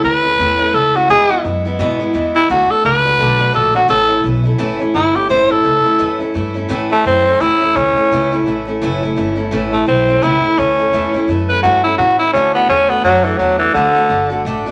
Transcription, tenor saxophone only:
0.04 0.76 B4 loud
0.74 0.97 A4 loud
0.96 1.09 F#4 medium
1.10 1.44 G#4 loud
2.35 2.49 E4 loud
2.51 2.72 F#4 medium
2.70 2.84 A4 loud
2.85 3.53 B4 loud
3.55 3.75 A4 medium
3.75 3.89 F#4 medium
3.90 4.24 A4 loud
4.95 5.17 E4 loud
5.16 5.29 G4 medium
5.30 5.52 C5 medium
5.51 6.19 A4 loud
6.92 7.06 A3 loud
7.06 7.42 C4 loud
7.41 7.77 E4 loud
7.76 8.44 C#4 loud
9.73 9.87 A3 medium
9.88 10.24 C4 medium
10.23 10.60 E4 loud
10.58 11.27 C#4 loud
11.49 11.62 B4 loud
11.63 11.83 F#4 loud
11.84 11.97 E4 medium
11.98 12.18 F#4 loud
12.19 12.33 E4 medium
12.33 12.54 C#4 loud
12.54 12.68 B3 medium
12.69 12.91 C#4 loud
12.90 13.03 B3 medium
13.04 13.26 F#3 loud
13.24 13.39 E3 medium
13.38 13.58 F#3 loud
13.59 13.73 E3 loud
13.74 14.43 D3 loud

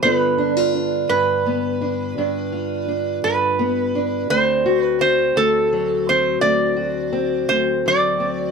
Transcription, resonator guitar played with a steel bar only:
0.03 0.14 C5 medium
0.14 1.08 B4 medium
1.09 3.18 B4 medium
3.24 4.30 B4 medium
4.30 4.81 C5 medium
4.81 5.00 B4 medium
5.01 5.37 C5 medium
5.37 6.10 A4 medium
6.09 6.41 C5 medium
6.41 7.52 D5 medium
7.49 7.86 C5 medium
7.88 8.51 D5 medium

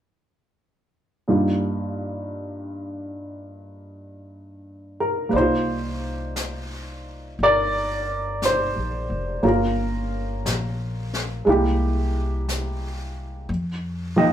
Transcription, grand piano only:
1.28 5.33 G2 soft
1.28 5.34 G3 soft
1.28 5.28 A#3 soft
1.28 5.34 D4 soft
1.28 5.34 D#4 soft
1.28 5.34 F4 soft
5.00 5.27 A#4 medium
5.29 9.41 A#3 soft
5.29 5.34 B4 soft
5.33 9.45 D#4 soft
5.33 7.37 C5 medium
5.33 7.42 D5 soft
5.40 9.42 F4 soft
7.43 9.41 A#4 medium
7.43 8.47 D5 medium
8.45 9.48 C5 medium
9.43 11.45 A#3 soft
9.43 11.47 C#4 soft
9.43 9.46 F4 soft
9.43 9.46 A#4 soft
9.47 11.45 F4 soft
9.47 13.13 A#4 medium
11.45 13.48 G#3 soft
11.45 13.49 A#3 soft
11.45 13.50 E4 soft
11.50 13.51 G4 medium
14.16 14.33 F3 medium
14.16 14.33 A#3 soft
14.16 14.33 D#4 soft
14.16 14.33 D#5 medium
14.16 14.33 G5 medium

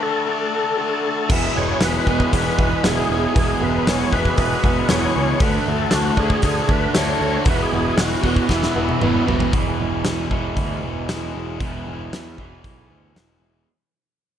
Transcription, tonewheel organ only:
0.03 0.77 A4 loud
0.78 1.31 A4 loud
1.31 1.57 E5 loud
1.57 1.82 C#5 medium
1.83 2.08 B4 loud
2.10 2.33 B4 loud
2.35 2.86 B4 loud
2.85 3.11 G#4 loud
3.12 3.34 G#4 loud
3.37 3.63 G#4 loud
3.63 3.88 B4 medium
3.90 4.14 C#5 loud
4.13 4.36 B4 loud
4.38 4.80 B4 loud
4.82 4.89 B4 medium
4.89 5.42 C#5 loud
5.42 5.59 B4 loud
5.60 5.66 B4 medium
5.70 5.94 A4 medium
5.94 6.20 F#4 loud
6.19 6.71 G#4 loud
6.71 6.96 B4 loud
6.97 7.49 C#5 medium
7.50 7.61 B4 medium
7.62 8.01 G#4 loud
8.00 8.47 F#4 loud
8.54 9.25 E4 medium

